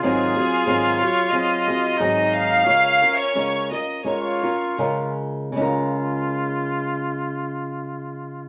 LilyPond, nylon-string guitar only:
\new Staff \with { instrumentName = "Nylon-string guitar" } { \time 4/4 \key des \major \tempo 4 = 84 <aes, ees ges c' aes'>8 <ges c' aes'>8 <aes, ees ges c' aes'>8 <ges aes'>8 <ges c' aes'>8 <ges c' aes'>8 <aes, ees ges c' ges' aes'>4 | <des aes des' f' bes'>8 <des' f' bes'>8 <des aes des' f' bes'>8 <des' f' bes'>8 <aes des' f' bes'>8 <des' f' bes'>8 <des aes des' f' bes'>4 | <des aes des' f' bes'>1 | }